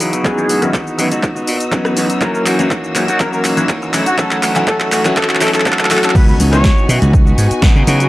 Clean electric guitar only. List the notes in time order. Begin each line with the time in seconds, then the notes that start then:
0.00 E3 B3 D#4 F#4
0.12 B3 D#4 F#4
0.24 E3 B3 D#4 F#4
0.48 E3 B3 D#4 F#4
0.73 E3 B3 D#4 F#4
0.98 E3 B3 D#4 F#4
1.10 B3 D#4 F#4
1.35 B3 D#4 F#4
1.71 E3 B3 D#4 F#4
1.96 E3 B3 D#4 F#4
2.09 B3 D#4 F#4
2.20 E3 A#3 C#4 F#4
2.45 E3 A#3 C#4 F#4
2.70 E3 A#3 C#4 F#4
2.95 E3 A#3 C#4 F#4
3.07 A#3 C#4 F#4
3.32 A#3 C#4 F#4
3.69 E3 A#3 C#4 F#4
3.93 A3 C#4 F#4
4.06 C#4 F#4
4.17 A3 C#4 F#4
4.42 A3 C#4 F#4
4.67 A3 C#4 F#4
4.91 A3 C#4 F#4
5.04 C#4 F#4
5.29 C#4 F#4
5.65 A3 C#4 F#4
5.90 A3 C#4 F#4
6.03 C#4 F#4
6.14 E3 B3 D#4 F#4
6.39 E3 B3 D#4 F#4
6.64 E3 B3 D#4 F#4
6.88 E3 B3 D#4 F#4
7.01 B3 D#4 F#4
7.25 B3 D#4 F#4
7.62 E3 B3 D#4 F#4
7.75 B3 D#4 F#4
7.87 E3 B3 D#4 F#4
8.00 B3 D#4 F#4